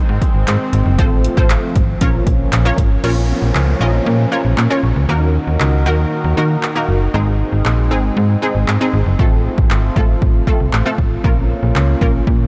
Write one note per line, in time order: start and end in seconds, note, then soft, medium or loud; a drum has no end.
0.00 0.97 D#3 medium
0.00 0.97 G#3 medium
0.00 0.23 C4 medium
0.00 1.98 C4 medium
0.00 0.23 D#4 medium
0.00 0.23 G#4 medium
0.00 0.23 C5 loud
0.09 0.19 G#2 loud
0.22 kick medium
0.22 closed hi-hat medium
0.35 0.44 G#1 medium
0.47 0.57 G#2 loud
0.47 clap loud
0.47 closed hi-hat loud
0.73 0.83 G#1 medium
0.73 closed hi-hat medium
0.86 1.00 F#1 loud
0.98 1.28 A1 loud
0.98 3.02 F3 medium
0.98 2.00 A3 medium
0.98 1.23 C4 medium
0.98 1.23 F4 medium
0.98 1.23 A4 medium
0.98 1.23 C5 medium
0.98 kick loud
0.98 closed hi-hat medium
1.24 closed hi-hat medium
1.37 1.57 A1 medium
1.37 2.01 C4 medium
1.37 2.00 F4 medium
1.37 2.01 A4 medium
1.37 2.01 C5 loud
1.37 kick loud
1.50 clap loud
1.50 closed hi-hat medium
1.76 1.96 G#1 medium
1.76 kick medium
1.76 closed hi-hat medium
2.01 2.21 A#1 loud
2.01 3.03 A#3 medium
2.01 2.52 C#4 medium
2.01 3.03 C#4 medium
2.01 2.52 F4 medium
2.01 2.53 A#4 medium
2.01 2.53 C#5 loud
2.01 kick medium
2.01 closed hi-hat medium
2.27 2.47 A#1 medium
2.27 kick medium
2.27 closed hi-hat medium
2.52 2.72 A#1 loud
2.52 clap loud
2.52 closed hi-hat loud
2.65 2.90 C#4 medium
2.65 2.90 F4 medium
2.65 2.90 A#4 medium
2.65 2.90 C#5 loud
2.78 2.98 G#1 loud
2.78 kick medium
2.78 closed hi-hat medium
3.04 3.34 A#1 loud
3.04 5.07 F3 medium
3.04 5.07 A#3 medium
3.04 3.53 C#4 medium
3.04 5.07 C#4 medium
3.04 3.53 F4 medium
3.04 3.53 A#4 medium
3.04 3.53 C#5 medium
3.04 crash medium
3.04 downlifter medium
3.42 3.52 A#1 medium
3.55 3.75 C#2 medium
3.55 clap loud
3.81 4.00 A#1 medium
3.81 4.13 C#4 medium
3.81 4.13 F4 medium
3.81 4.14 A#4 medium
3.81 4.14 D#5 medium
4.06 4.26 A#2 loud
4.32 4.56 C#4 medium
4.32 4.56 F4 medium
4.32 4.57 A#4 medium
4.32 4.57 C#5 medium
4.45 4.55 A#1 medium
4.58 4.68 A#2 loud
4.58 clap loud
4.70 4.95 C#4 medium
4.70 4.95 F4 medium
4.70 4.95 A#4 medium
4.70 4.95 C#5 medium
4.83 4.93 A#1 medium
4.96 5.06 C#2 medium
5.09 5.39 D#2 loud
5.09 7.12 D#3 medium
5.09 5.58 A#3 medium
5.09 5.58 D#4 medium
5.09 9.15 D#4 medium
5.09 7.12 F#4 medium
5.09 5.58 F#4 medium
5.09 7.12 A#4 medium
5.09 5.58 A#4 medium
5.47 5.57 D#2 medium
5.60 5.88 C#2 medium
5.60 clap loud
5.86 6.06 D#2 medium
5.86 6.19 A#3 medium
5.86 6.19 D#4 medium
5.86 6.19 F#4 medium
5.86 6.19 A#4 medium
6.24 6.34 D#2 medium
6.37 6.57 D#3 loud
6.37 6.62 A#3 medium
6.37 6.62 D#4 medium
6.37 6.62 F#4 medium
6.37 6.62 A#4 medium
6.63 clap loud
6.75 7.00 A#3 medium
6.75 7.00 D#4 medium
6.75 7.00 F#4 medium
6.75 7.00 A#4 medium
6.89 7.08 F#1 medium
7.14 7.44 G#1 loud
7.14 7.63 G#3 medium
7.14 9.17 G#3 medium
7.14 11.20 C4 medium
7.14 7.63 C4 medium
7.14 7.63 D#4 medium
7.14 7.63 G#4 medium
7.53 7.63 G#1 medium
7.65 7.93 A#1 medium
7.65 clap loud
7.91 8.11 G#1 medium
7.91 8.24 G#3 medium
7.91 8.24 C4 medium
7.91 8.24 D#4 medium
7.91 8.24 G#4 medium
8.17 8.36 G#2 loud
8.42 8.67 G#3 medium
8.42 8.67 C4 medium
8.42 8.67 D#4 medium
8.42 8.67 G#4 medium
8.55 8.65 G#1 medium
8.68 8.78 G#2 medium
8.68 clap loud
8.81 9.05 G#3 medium
8.81 9.05 C4 medium
8.81 9.05 D#4 medium
8.81 9.05 G#4 medium
8.94 9.03 G#1 medium
9.06 9.16 F#1 medium
9.19 9.49 A1 loud
9.19 9.68 A3 medium
9.19 11.22 A3 medium
9.19 9.68 C4 medium
9.19 12.47 F4 medium
9.19 9.68 F4 medium
9.19 9.68 A4 medium
9.19 kick loud
9.58 9.68 A1 medium
9.58 kick loud
9.70 9.90 G#1 medium
9.70 clap loud
9.96 10.16 A1 medium
9.96 10.29 A3 medium
9.96 10.29 C4 medium
9.96 10.29 F4 medium
9.96 10.29 A4 medium
9.96 kick medium
10.22 10.42 A1 medium
10.22 kick medium
10.47 10.52 C2 soft
10.47 10.72 A3 medium
10.47 10.72 C4 medium
10.47 10.72 F4 medium
10.47 10.72 A4 medium
10.47 kick medium
10.60 10.70 C2 medium
10.73 10.83 A1 medium
10.73 clap loud
10.86 11.10 A3 medium
10.86 11.10 C4 medium
10.86 11.10 F4 medium
10.86 11.11 A4 medium
10.98 11.18 A1 medium
10.98 kick medium
11.24 11.54 A#1 loud
11.24 11.73 A#3 medium
11.24 12.47 A#3 medium
11.24 11.73 C#4 medium
11.24 12.47 C#4 medium
11.24 11.73 F4 medium
11.24 11.73 A#4 medium
11.24 kick loud
11.63 11.73 A#1 medium
11.75 11.95 C#2 medium
11.75 clap loud
12.01 12.21 A#1 medium
12.01 12.34 A#3 medium
12.01 12.34 C#4 medium
12.01 12.34 F4 medium
12.01 12.34 A#4 medium
12.01 kick medium
12.27 12.47 A#2 loud
12.27 kick medium